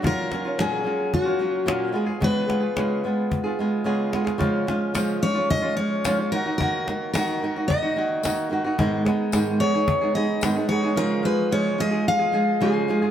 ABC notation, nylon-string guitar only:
X:1
M:4/4
L:1/16
Q:1/4=110
K:C#mix
V:1 name="Nylon-string guitar"
[A,,F,A,CE]2 [F,A,CE] [A,CE] [A,,F,A,CE]2 [F,A,CE]3 [A,CE] [F,A,CE]2 [A,,F,A,CE]2 [G,B,EG] [B,EG] | [C,G,B,EG]2 [G,B,EG] [B,EG] [C,G,B,EG]2 [G,B,EG]3 [B,EG] [G,B,EG]2 [C,G,B,EG]2 [G,B,EG] [B,EG] | [C,E,G,CE]2 [E,G,CE]2 [C,E,G,CE]2 [E,G,CE] [G,CE]2 [G,CE] [E,G,CE]2 [C,E,G,CE] [G,CE] [D,A,DF] [A,DF] | [D,A,DF]2 [D,A,DF]2 [D,A,DF]2 [D,A,DF] [A,DF]2 [A,DF] [D,A,DF]2 [D,A,DF]2 [D,A,DF] [A,DF] |
[G,,D,G,B,DG]2 [G,B,DG]2 [G,,D,G,B,DG]2 [G,B,DG] [G,B,DG]2 [G,B,DG] [G,B,DG]2 [G,,D,G,B,DG] [G,B,DG] [G,B,DG] [G,B,DG] | [C,E,G,EG]2 [E,G,EG]2 [C,E,G,EG]2 [E,G,EG] [G,EG]2 [G,EG] [E,G,EG]2 [C,E,G,EG]2 [E,G,EG] [G,EG] |]